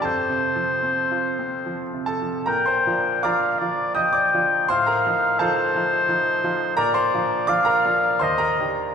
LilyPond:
<<
  \new Staff \with { instrumentName = "Oboe" } { \time 3/4 \key bes \major \tempo 4 = 82 c''2~ c''8 r8 | g''4 f''8 d''8 g''4 | f''4 c''2 | d''4 f''4 ees''8 r8 | }
  \new Staff \with { instrumentName = "Grand piano" } { \time 3/4 \key bes \major << { <a' a''>2~ <a' a''>8 <a' a''>8 | <bes' bes''>16 <c'' c'''>8. <d'' bes'' d'''>4 <ees'' ees'''>16 <d'' d'''>8. | <c'' c'''>16 <bes' bes''>8. <a' f'' a''>4 r4 | <bes' bes''>16 <c'' c'''>8. <d'' d'''>16 <bes' bes''>8. <c'' c'''>16 <bes' bes''>8. | } \\ { \tuplet 3/2 { f,8 c8 f8 c'8 f'8 c'8 f8 c8 f8 } | bes,8 <f d' f'>8 <f d' f'>8 <f d' f'>8 <f d' f'>8 <f d' f'>8 | a,8 <f ees' f'>8 <f ees' f'>8 <f ees' f'>8 <f ees' f'>8 <f ees' f'>8 | bes,8 <f d' f'>8 <f d' f'>8 <f d' f'>8 ees,8 <ees d' g'>8 | } >> }
>>